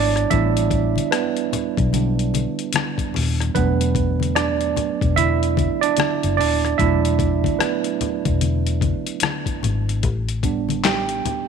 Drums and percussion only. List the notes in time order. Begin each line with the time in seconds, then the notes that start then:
0.16 cross-stick, closed hi-hat
0.30 kick, closed hi-hat, muted conga
0.57 closed hi-hat
0.71 kick, closed hi-hat, muted conga
0.96 closed hi-hat, high conga
1.12 cross-stick, closed hi-hat, muted conga
1.37 closed hi-hat
1.53 closed hi-hat, muted conga, low conga
1.77 kick, closed hi-hat
1.93 closed hi-hat, high conga
2.19 closed hi-hat
2.34 closed hi-hat, muted conga, high conga
2.59 closed hi-hat
2.73 cross-stick, closed hi-hat, muted conga, high conga
2.98 kick, closed hi-hat
3.14 open hi-hat, muted conga, low conga
3.40 cross-stick, closed hi-hat
3.55 kick, closed hi-hat
3.81 closed hi-hat
3.95 kick, closed hi-hat
4.20 closed hi-hat, high conga
4.36 cross-stick, closed hi-hat
4.61 closed hi-hat
4.76 closed hi-hat, muted conga, low conga
5.01 kick, closed hi-hat
5.17 closed hi-hat, high conga
5.43 closed hi-hat
5.57 kick, closed hi-hat, muted conga, high conga
5.83 closed hi-hat
5.97 cross-stick, closed hi-hat, muted conga, high conga
6.23 closed hi-hat
6.38 open hi-hat, muted conga, low conga
6.65 cross-stick, closed hi-hat
6.79 kick, closed hi-hat
7.05 closed hi-hat
7.19 kick, closed hi-hat, muted conga
7.44 kick, closed hi-hat, high conga
7.61 cross-stick, closed hi-hat, muted conga
7.84 closed hi-hat
8.01 closed hi-hat, low conga
8.25 kick, closed hi-hat
8.41 closed hi-hat, muted conga, high conga
8.67 closed hi-hat
8.81 kick, closed hi-hat, muted conga, high conga
9.07 closed hi-hat
9.20 cross-stick, closed hi-hat, high conga
9.46 kick, closed hi-hat
9.63 closed hi-hat, muted conga, low conga
9.89 closed hi-hat
10.03 kick, closed hi-hat, muted conga
10.29 closed hi-hat
10.43 kick, closed hi-hat, muted conga
10.69 closed hi-hat, high conga
10.84 snare, clap, closed hi-hat
11.09 closed hi-hat
11.25 closed hi-hat, low conga